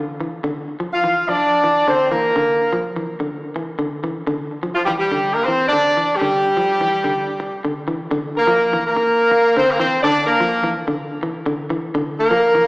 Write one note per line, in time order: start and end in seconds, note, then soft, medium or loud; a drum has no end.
0.00 0.17 D3 medium
0.20 0.40 E3 medium
0.44 0.64 D3 medium
0.80 1.00 F3 medium
0.93 1.27 F4 medium
0.93 1.27 F5 medium
1.04 1.24 E3 medium
1.28 1.48 F3 medium
1.28 1.88 D4 medium
1.28 1.88 D5 medium
1.64 1.84 E3 medium
1.88 2.08 D3 medium
1.88 2.12 C4 medium
1.88 2.12 C5 medium
2.12 2.32 E3 medium
2.12 2.80 A#3 medium
2.12 2.80 A#4 medium
2.36 2.56 D3 medium
2.73 2.92 F3 medium
2.96 3.16 E3 medium
3.20 3.40 D3 medium
3.56 3.76 E3 medium
3.79 3.99 D3 medium
4.04 4.24 E3 medium
4.27 4.48 D3 medium
4.63 4.84 F3 medium
4.75 4.81 F3 medium
4.75 4.81 F4 medium
4.85 5.08 E3 medium
4.85 4.91 G3 medium
4.85 4.91 G4 medium
4.99 5.34 G3 medium
4.99 5.34 G4 medium
5.12 5.32 D3 medium
5.34 5.47 A#3 medium
5.34 5.47 A#4 medium
5.45 5.68 E3 medium
5.45 5.71 C4 medium
5.45 5.71 C5 medium
5.68 6.15 D4 loud
5.68 6.15 D5 loud
5.73 5.93 D3 medium
5.97 6.17 E3 medium
6.16 7.62 G3 medium
6.16 7.62 G4 medium
6.21 6.41 D3 medium
6.57 6.77 F3 medium
6.81 7.01 E3 medium
7.04 7.24 D3 medium
7.40 muted clean electric guitar stroke medium
7.65 7.84 D3 medium
7.88 8.08 E3 medium
8.11 8.32 D3 medium
8.37 8.82 A#3 medium
8.37 8.82 A#4 medium
8.47 8.68 F3 medium
8.73 8.93 E3 medium
8.87 9.53 A#3 medium
8.87 9.53 A#4 medium
8.96 muted clean electric guitar stroke medium
9.31 muted clean electric guitar stroke medium
9.57 9.76 D3 medium
9.57 9.69 C4 medium
9.57 9.69 C5 medium
9.71 9.81 A#3 medium
9.71 9.81 A#4 medium
9.79 10.00 E3 medium
9.79 10.02 C4 medium
9.79 10.02 C5 medium
10.03 10.24 D3 loud
10.03 10.26 D4 loud
10.03 10.26 D5 loud
10.26 10.72 A#3 medium
10.26 10.72 A#4 medium
10.40 10.60 F3 medium
10.64 10.84 E3 medium
10.88 11.08 D3 medium
11.23 11.43 E3 medium
11.46 11.67 D3 medium
11.70 11.91 E3 medium
11.95 12.15 D3 loud
12.20 12.65 A#3 medium
12.20 12.65 A#4 medium
12.31 12.51 F3 medium
12.55 12.67 E3 medium